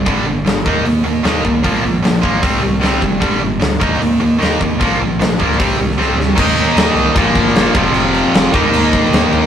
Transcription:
<<
  \new Staff \with { instrumentName = "Distorted electric guitar" } { \clef bass \time 4/4 \key ees \lydian \tempo 4 = 152 <g, d g>8 <g, d>8 <g, d>8 <ees bes ees'>8 <ees bes>8 <ees bes>8 <ees bes ees'>8 <ees bes>8 | <bes, f bes>8 <bes, f>8 <bes, f>8 <bes, f bes>8 <c g c'>8 <c g>8 <c g c'>8 <c g>8 | <g, d g>8 <g, d>8 <g, d>8 <ees bes ees'>8 <ees bes>8 <ees bes>8 <ees bes ees'>8 <ees bes>8 | <bes, f bes>8 <bes, f>8 <bes, f>8 <bes, f bes>8 <c g c'>8 <c g>8 <c g c'>8 <c g>8 |
<ees bes ees'>2 <bes, f bes>4. <f, c f>8~ | <f, c f>4. <ees bes ees'>2~ <ees bes ees'>8 | }
  \new Staff \with { instrumentName = "Distorted electric guitar" } { \clef bass \time 4/4 \key ees \lydian r1 | r1 | r1 | r1 |
<ees bes ees'>2 <bes, f bes>4. <f, c f>8~ | <f, c f>4. <ees bes ees'>2~ <ees bes ees'>8 | }
  \new Staff \with { instrumentName = "Overdriven electric guitar" } { \clef bass \time 4/4 \key ees \lydian <g, d g>8 <g, d>8 <g, d>8 <ees bes ees'>8 <ees bes>8 <ees bes>8 <ees bes ees'>8 <ees bes>8 | <bes, f bes>8 <bes, f>8 <bes, f>8 <bes, f bes>8 <c g c'>8 <c g>8 <c g c'>8 <c g>8 | <g, d g>8 <g, d>8 <g, d>8 <ees bes ees'>8 <ees bes>8 <ees bes>8 <ees bes ees'>8 <ees bes>8 | <bes, f bes>8 <bes, f>8 <bes, f>8 <bes, f bes>8 <c g c'>8 <c g>8 <c g c'>8 <c g>8 |
<ees bes ees'>2 <bes, f bes>4. <f, c f>8~ | <f, c f>4. <ees bes ees'>2~ <ees bes ees'>8 | }
  \new Staff \with { instrumentName = "Sub bass" } { \clef bass \time 4/4 \key ees \lydian g,,8 g,,8 g,,8 ees,8 ees,8 ees,8 ees,8 c,8 | bes,,8 bes,,8 bes,,8 bes,,8 c,8 c,8 c,8 f,,8 | g,,8 g,,8 d,8 ees,8 ees,8 ees,8 ees,8 ees,8 | bes,,8 bes,,8 bes,,8 d,8 c,8 c,8 c,8 d,8 |
ees,4 ees,8 c,8 bes,,8 bes,,8 g,,8 f,,8 | f,,4 f,,8 ees,8 ees,4 ees,8 ees,8 | }
  \new DrumStaff \with { instrumentName = "Drums" } \drummode { \time 4/4 <hho bd>4 <hho sn>8 bd8 hho4 <hho sn>8 bd8 | <hho bd>4 <hho sn>8 bd8 <hho bd>4 <hho sn>8 bd8 | <hho bd>4 <hho sn>8 bd16 sn16 hho4 <hho sn>8 bd8 | <hho bd>4 <hho sn>8 bd16 sn16 <hho bd>8. sn16 sn8 sn8 |
<cymc bd>8 cymc8 <cymc sn>8 cymc8 <cymc bd>8 <cymc bd>16 sn16 <cymc sn>8 <cymc bd>8 | cymc8 cymc8 <cymc sn>8 <cymc bd>8 cymc8 <cymc bd>16 sn16 <cymc sn>8 cymc8 | }
>>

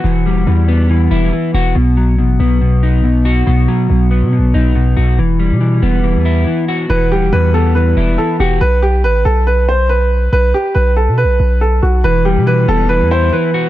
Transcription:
<<
  \new Staff \with { instrumentName = "Grand piano" } { \time 4/4 \key e \minor \tempo 4 = 140 r1 | r1 | r1 | r1 |
b'8 g'8 b'8 a'8 b'4 a'8 g'8 | b'8 g'8 b'8 a'8 b'8 c''8 b'4 | b'8 g'8 b'8 a'8 b'4 a'8 fis'8 | b'8 g'8 b'8 a'8 b'8 c''8 b'4 | }
  \new Staff \with { instrumentName = "Clean electric guitar" } { \clef bass \time 4/4 \key e \minor <e fis'>8 g8 e8 b8 e8 e'8 e8 fis'8 | b,8 fis8 b,8 b8 b,8 dis'8 b,8 fis'8 | b,8 fis8 b,8 b8 b,8 dis'8 b,8 fis'8 | e8 g8 e8 b8 e8 e'8 e8 fis'8 |
e8 g8 e8 b8 e8 e'8 e8 fis'8 | r1 | r1 | e8 g8 e8 b8 e8 e'8 e8 fis'8 | }
  \new Staff \with { instrumentName = "808-style bass" } { \clef bass \time 4/4 \key e \minor e,,8 dis,,16 e,,16 e,4. e,,8 r8 e,,8 | b,,4 a,,8 b,,2~ b,,8 | b,,8 r8 b,,8. b,16. b,,16. b,,4 b,,8 | e,,8. b,8. e,,8. e,8. r4 |
e,,8 dis,,16 e,,16 e,4. e,,8 r8 e,,8 | b,,4 a,,8 b,,2~ b,,8 | b,,8 r8 b,,8. b,16. b,,16. b,,4 b,,8 | e,,8. b,8. e,,8. e,8. r4 | }
>>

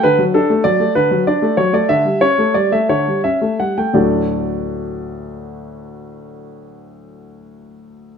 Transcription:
<<
  \new Staff \with { instrumentName = "Grand piano" } { \time 6/8 \key d \major \tempo 4. = 56 b'8 a'8 d''8 b'8 d''8 cis''16 d''16 | e''8 cis''8 d''16 e''16 cis''8 e''8 fis''16 g''16 | <d, a, fis a d' fis' d''>2.~ | <d, a, fis a d' fis' d''>2. | }
  \new Staff \with { instrumentName = "Grand piano" } { \clef bass \time 6/8 \key d \major d16 fis16 d'16 a16 fis16 a16 d16 fis16 d'16 a16 fis16 a16 | d16 g16 cis'16 a16 g16 a16 d16 g16 cis'16 a16 g16 a16 | r2. | r2. | }
>>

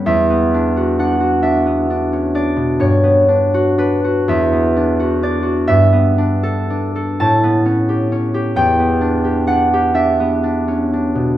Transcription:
\new Staff \with { instrumentName = "Harp" } { \time 6/8 \key e \dorian \tempo 4. = 43 << { <b' e''>4 fis''8 e''4 d''8 | cis''4 b'8 e''4 d''8 | e''4. a''4. | g''4 fis''8 e''4. | } \\ { <e, g e'>16 b16 d'16 fis'16 d'16 fis'16 d'16 b16 d'16 cis'16 d'16 b,16 | g,16 b16 d'16 fis'16 d'16 fis'16 e,16 b16 d'16 fis'16 d'16 fis'16 | g,16 b16 d'16 a'16 d'16 a'16 a,16 b16 cis'16 g'16 cis'16 g'16 | e,16 b16 d'16 g'16 d'16 g'16 d'16 b16 d'16 cis'16 d'16 b,16 | } >> }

